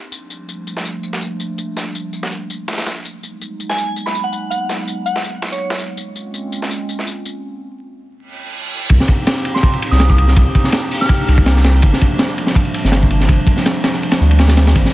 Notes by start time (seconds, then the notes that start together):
Already playing: C4 D4 D#4
0.12 F3 G3 A3 A#3 D4, tambourine
0.30 tambourine
0.49 tambourine
0.67 tambourine
0.77 snare
0.85 tambourine
1.03 tambourine
1.13 snare
1.22 tambourine
1.40 tambourine
1.58 tambourine
1.77 snare, tambourine
1.95 tambourine
2.13 tambourine
2.23 snare
2.32 tambourine
2.50 tambourine
2.68 snare, tambourine
2.73 snare, tambourine
2.78 snare, tambourine
2.82 snare, tambourine
2.87 snare, tambourine
3.05 F#3 G#3 A#3 B3 D#4, tambourine
3.23 tambourine
3.42 tambourine
3.60 tambourine
3.69 G#5, snare
3.78 tambourine
3.96 tambourine
4.06 B5, snare
4.15 tambourine
4.24 F#5
4.32 F#5, tambourine
4.50 F#5, tambourine
4.69 snare, tambourine
4.88 tambourine
5.06 F#5, tambourine
5.16 snare
5.24 tambourine
5.42 snare
5.52 C#5, tambourine
5.70 snare
5.79 tambourine
5.97 G#3 A#3 C4 C#4 F4, tambourine
6.16 tambourine
6.34 tambourine
6.52 tambourine
6.62 snare
6.71 tambourine
6.89 tambourine
6.99 snare
7.07 tambourine
7.25 tambourine
8.17 reverse cymbal
8.89 C2, kick, ride
9.00 snare
9.08 kick, ride
9.27 snare, ride
9.36 snare
9.45 ride
9.55 C6, snare
9.63 kick, ride
9.73 ride
9.82 ride
9.91 C2 D#6, snare
10.00 snare, ride
10.10 D#6, kick
10.18 ride
10.28 snare
10.36 C2, kick, ride
10.55 kick, ride
10.64 snare
10.72 snare, ride
10.91 A#3 C4 D4 D#4 G4, open hi-hat
11.01 F6, snare
11.09 kick, ride
11.28 C2, ride
11.38 kick
11.46 snare, ride
11.56 snare
11.64 snare, ride
11.82 G1, kick, ride
11.93 snare
12.01 kick, ride
12.19 snare, ride
12.28 snare
12.38 ride
12.47 snare
12.55 kick, ride
12.65 ride
12.74 ride
12.84 G1, snare
12.92 snare, ride
13.03 kick
13.10 ride
13.20 snare
13.29 G1, kick, ride
13.47 kick, ride
13.57 snare
13.66 snare, ride
13.84 F3 G3 A3 A#3 D4, snare, ride
13.94 snare
14.03 ride
14.12 snare, ride
14.20 D2, snare
14.31 ride
14.39 snare, ride
14.48 snare, ride
14.57 snare, ride
14.67 snare, ride
14.75 G#1, kick, ride
14.85 snare